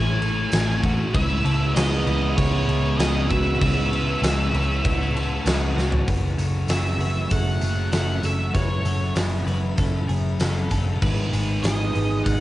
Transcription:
Already playing: A1 A2 E3 A3 C#4 E4 C#5 G#5 C#6
0.21 E3 A3 A4, crash
0.51 A1 A2 E3 A3 G#4, snare, tambourine, crash
0.83 A1 E3 A3 F#4, kick, crash
1.13 C#2 C#3 E3 G#3 B3 C#4 E4 B4 E5 C#6, kick, crash
1.45 C#2 G#3 C#4 A5, crash
1.75 C#2 C#3 G#3 G#4 D#5, snare, tambourine, crash
1.79 C#4
2.07 C#2 G#3 C#4 B4, crash
2.37 C#2 C#3 G#3 C#4 C#5, kick, crash
2.68 C#2 G#3 C#4 A5, crash
2.97 C#2 C#3 G#3 C#4 G#4 D#5, snare, tambourine, crash
3.29 C#2 C#4 F#4 E5, kick, crash
3.34 G#3
3.59 C#2 C#3 G#3 C#4 B4 E5 F#5, kick, crash
3.92 G#3 C#4 A5, crash
4.22 C#2 C#3 G#3 G#4, snare, tambourine, crash
4.26 C#4
4.54 C#2 G#3 C#4 B4, crash
4.83 C#2 C#3 G#3 C#4 C#5, kick, crash
5.15 G#3 C#4 A5, crash
5.45 C#2 C#3 G#3 C#4 G#4, snare, tambourine, crash
5.76 C#2 G#3 C#4 F#4, snare
5.92 floor tom
6.06 F#1 F#2 C#3 E3 F#3 A3 C#4 F#4 B4 E5 F#5 C#6, kick, open hi-hat, tambourine
6.38 F#1 C#3 F#3 A4, open hi-hat, tambourine
6.68 F#1 F#2 C#3 F#3 G#4 E5, snare, open hi-hat, tambourine
6.99 F#1 C#3 F#3 B4, open hi-hat, tambourine
7.30 F#1 F#2 C#3 F#3 A4 F#5, kick, open hi-hat, tambourine
7.61 F#1 C#3 F#3 G#4, open hi-hat, tambourine
7.92 F#1 F#2 C#3 F#3 A4 F#5, snare, open hi-hat, tambourine
8.23 F#1 C#3 F#3 A4 E5, open hi-hat, tambourine
8.53 F#1 F#2 C#3 F#3 B4 C#5 B5, kick, open hi-hat, tambourine
8.84 F#1 C#3 F#3 A4, open hi-hat, tambourine
9.15 F#1 F#2 C#3 F#3 G#4, snare, open hi-hat, tambourine
9.45 F#1 C#3 F#3 B4, open hi-hat, tambourine
9.78 F#1 F#2 C#3 F#3 A4, kick, open hi-hat, tambourine
10.08 F#1 C#3 F#3 G#4, open hi-hat
10.40 F#1 F#2 C#3 F#3 A4, snare, open hi-hat, tambourine
10.70 F#1 C#3 F#3 A4, kick, open hi-hat, tambourine
11.00 G#1 G#2 D#3 G#3 B3 D#4 G#4 B4 D#5 G#5 D#6, kick, tambourine, crash
11.31 G#1 D#3 G#3 G#4, open hi-hat, tambourine
11.63 G#1 G#2 D#3 G#3 G#4 D#5, snare, open hi-hat, tambourine
11.94 G#1 D#3 G#3 B4, open hi-hat, tambourine
12.24 G#1 G#2 D#3 G#4 F#5, kick, open hi-hat, tambourine
12.29 G#3

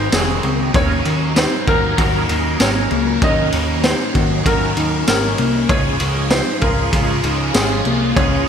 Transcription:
Already playing: G#2 D#3 F#3 A#3 C4 D#4 F#4 G#4 C5
0.12 F1 F#3 C4 C#4 F#4 G#4, snare, ride, tambourine
0.16 G#4
0.43 C#2 C4, ride
0.74 D#2 D#3 F#3 C#4 D#4 A#4 C#5, kick, ride
1.05 D#2, ride
1.36 D#4 C5, snare, ride, tambourine
1.67 D#2 D#4 F#4 A#4, kick, ride
1.71 C#4
1.97 D#2 D#3 F#3 C#4 D#4 F#4 A#4, kick, ride
2.29 D#2 D#4, ride
2.59 G#1 F#3 C#4 D#4 C#5, snare, ride, tambourine
2.63 A#4
2.91 C#2 A#3, ride
3.20 D#2 D#3 F#3 C#4 D#5, kick, ride
3.26 D#4 A#4
3.52 D#2, ride
3.84 D#4 C5, snare, ride, tambourine
4.15 D#2 F#4, kick, ride
4.44 D#2 D#3 F#3 F#4 A#4, kick, ride
4.48 C#4 D#4 A#4
4.77 D#2 D#4, ride
5.07 G#1 C#4 A#4, snare, ride, tambourine
5.38 C2 A#3, ride
5.69 C#2 C#3 F3 G#3 C#4 F4 G#4 C#5, kick, ride
6.00 C#2, ride
6.31 D#4 C5, snare, ride, tambourine
6.61 C#2 F4 G#4 A#4, kick, ride
6.66 C#4
6.93 C#2 C#3 G#3 C#4 F4 G#4, kick, ride
7.24 C#2 D#4, ride
7.54 G#1 G#3 C#4 F4 G#4, snare, ride, tambourine
7.59 G#4
7.85 C2 A#3, ride
8.16 C#2 C#3 G#3 C#4 F4 G#4 C#5, kick, ride

